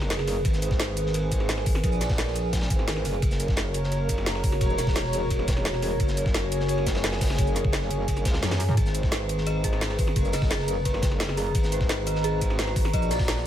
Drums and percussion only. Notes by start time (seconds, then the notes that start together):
0.02 snare
0.10 snare, closed hi-hat, ride
0.19 snare
0.27 snare, open hi-hat, ride, shaker
0.36 ride
0.45 kick, closed hi-hat, ride
0.54 snare, shaker
0.62 closed hi-hat, ride, shaker
0.71 kick, snare
0.80 snare, closed hi-hat, ride
0.96 closed hi-hat, ride, shaker
1.06 snare
1.14 closed hi-hat, ride
1.32 kick, closed hi-hat, ride, shaker
1.40 snare
1.49 snare, closed hi-hat, ride
1.58 snare
1.66 kick, open hi-hat, ride, shaker
1.75 snare
1.84 kick, closed hi-hat, ride
1.92 shaker
2.01 snare, closed hi-hat, open hi-hat, shaker
2.09 kick, snare
2.18 snare, closed hi-hat, ride
2.27 snare
2.36 closed hi-hat, ride, shaker
2.53 kick, snare, closed hi-hat, ride
2.57 snare, ride
2.61 snare, ride
2.70 kick, closed hi-hat, ride, shaker
2.79 snare
2.87 snare, closed hi-hat, ride
2.96 snare
3.05 snare, open hi-hat, ride, shaker
3.14 ride
3.22 kick, closed hi-hat, ride
3.31 snare, shaker
3.40 closed hi-hat, ride, shaker
3.48 kick, snare
3.56 snare, closed hi-hat, ride
3.74 closed hi-hat, ride, shaker
3.84 snare
3.92 closed hi-hat, ride
4.09 kick, closed hi-hat, ride, shaker
4.18 snare
4.26 snare, closed hi-hat, ride
4.35 snare
4.43 kick, open hi-hat, ride, shaker
4.52 snare
4.61 kick, closed hi-hat, ride
4.70 shaker
4.78 snare, closed hi-hat, open hi-hat, shaker
4.87 kick, snare
4.95 snare, closed hi-hat, ride
5.04 snare
5.13 closed hi-hat, ride, shaker
5.30 kick, closed hi-hat, ride
5.39 snare
5.48 kick, snare, closed hi-hat, ride, shaker
5.57 snare
5.65 snare, closed hi-hat, ride
5.74 snare
5.82 snare, open hi-hat, ride, shaker
5.91 ride
6.00 kick, closed hi-hat, ride
6.08 snare, shaker
6.17 closed hi-hat, ride, shaker
6.26 kick, snare
6.34 snare, closed hi-hat, ride
6.52 closed hi-hat, ride, shaker
6.60 snare
6.68 closed hi-hat, ride
6.78 snare
6.87 kick, snare, closed hi-hat, ride, shaker
6.95 snare, ride
7.03 snare, closed hi-hat, ride
7.12 snare, ride
7.21 kick, snare, open hi-hat, ride, shaker
7.26 snare, ride
7.30 snare, ride
7.34 snare, ride
7.38 kick, closed hi-hat, ride
7.47 shaker
7.56 snare, closed hi-hat, shaker
7.65 kick
7.73 snare, closed hi-hat, ride
7.82 snare
7.91 closed hi-hat, ride, shaker
8.08 kick, closed hi-hat, ride
8.17 snare, shaker
8.25 kick, snare, closed hi-hat, ride, shaker
8.34 snare, ride
8.42 snare, closed hi-hat, high tom, ride
8.47 snare, ride
8.51 snare, ride
8.55 snare, ride
8.60 snare, open hi-hat, ride, shaker
8.69 mid tom, ride
8.77 kick, closed hi-hat, ride
8.86 snare, shaker
8.94 closed hi-hat, ride, shaker
9.03 kick, snare
9.11 snare, closed hi-hat, ride
9.29 closed hi-hat, ride, shaker
9.38 snare
9.46 closed hi-hat, ride
9.64 kick, closed hi-hat, ride, shaker
9.73 snare
9.81 snare, closed hi-hat, ride
9.90 snare
9.99 kick, open hi-hat, ride, shaker
10.07 snare
10.16 kick, closed hi-hat, ride
10.25 shaker
10.32 snare, closed hi-hat, open hi-hat, shaker
10.42 kick, snare
10.51 snare, closed hi-hat, ride
10.59 snare
10.68 closed hi-hat, ride, shaker
10.85 kick, closed hi-hat, ride
10.94 snare
11.02 kick, snare, closed hi-hat, ride, shaker
11.11 snare
11.20 snare, closed hi-hat, ride
11.28 snare
11.37 snare, open hi-hat, ride, shaker
11.46 ride
11.55 kick, closed hi-hat, ride
11.63 snare, shaker
11.72 closed hi-hat, ride, shaker
11.81 kick, snare
11.89 snare, closed hi-hat, ride
12.07 closed hi-hat, ride, shaker
12.15 snare
12.24 closed hi-hat, ride
12.41 kick, closed hi-hat, ride, shaker
12.50 snare
12.59 snare, closed hi-hat, ride
12.68 snare
12.76 kick, open hi-hat, ride, shaker
12.85 snare
12.93 kick, closed hi-hat, ride
13.02 shaker
13.11 snare, closed hi-hat, open hi-hat, shaker
13.19 kick, snare
13.28 snare, closed hi-hat, ride
13.37 snare